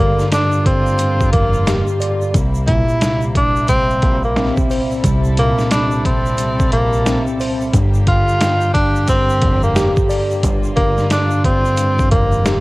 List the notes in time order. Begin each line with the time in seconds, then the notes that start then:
Already playing: G1 G2 D3 G3 A#3 F4 G4 D5
0.00 D3
0.19 snare, shaker
0.32 G2 D4, snare, closed hi-hat, shaker
0.52 shaker
0.66 C4, kick, closed hi-hat
0.87 shaker
0.99 G2, closed hi-hat, shaker
1.21 kick, shaker
1.33 F1 A#3, kick, closed hi-hat
1.54 shaker
1.67 G4, snare, closed hi-hat, shaker
1.87 shaker
2.00 D5, closed hi-hat, shaker
2.21 shaker
2.34 C2 C3 G3 A#3 E4, kick, closed hi-hat, shaker
2.55 shaker
2.67 A#2 E4, kick, closed hi-hat
2.89 shaker
3.01 C2, snare, closed hi-hat, shaker
3.21 shaker
3.35 D4, kick, closed hi-hat
3.56 shaker
3.68 C2 C4, kick, closed hi-hat, shaker
3.90 shaker
4.02 A#1, kick, closed hi-hat
4.23 A#3, shaker
4.36 C4, snare, closed hi-hat, shaker
4.57 kick, shaker
4.71 C5, open hi-hat, shaker
4.91 shaker
5.03 C2 A4, kick, closed hi-hat, shaker
5.24 shaker
5.37 A#2 A#3, closed hi-hat
5.58 snare, shaker
5.71 C2 D4, snare, closed hi-hat, shaker
5.91 shaker
6.05 C4, kick, closed hi-hat
6.26 shaker
6.38 C2, closed hi-hat, shaker
6.60 kick, shaker
6.72 A#1 A#3, closed hi-hat
6.93 shaker
7.06 C4, snare, closed hi-hat, shaker
7.27 shaker
7.40 C5, open hi-hat, shaker
7.61 shaker
7.73 G1 G2 D3 A#3 G4, kick, closed hi-hat, shaker
7.94 shaker
8.07 D3 F4, kick, closed hi-hat
8.28 shaker
8.41 G2, snare, closed hi-hat, shaker
8.61 shaker
8.74 D4, kick, closed hi-hat
8.96 shaker
9.08 G2 C4, kick, closed hi-hat, shaker
9.29 shaker
9.42 F1, kick, closed hi-hat
9.63 A#3, shaker
9.76 G4, snare, closed hi-hat, shaker
9.96 kick, shaker
10.09 D5, open hi-hat, shaker
10.31 shaker
10.42 G1 G2 F4, kick, closed hi-hat, shaker
10.64 shaker
10.76 D3 A#3, kick, closed hi-hat
10.98 snare, shaker
11.10 G2 D4, snare, closed hi-hat, shaker
11.31 shaker
11.44 C4, kick, closed hi-hat
11.65 shaker
11.77 G2, closed hi-hat, shaker
11.99 kick, shaker
12.11 F1 A#3, kick, closed hi-hat
12.32 shaker
12.46 G4, snare, closed hi-hat, shaker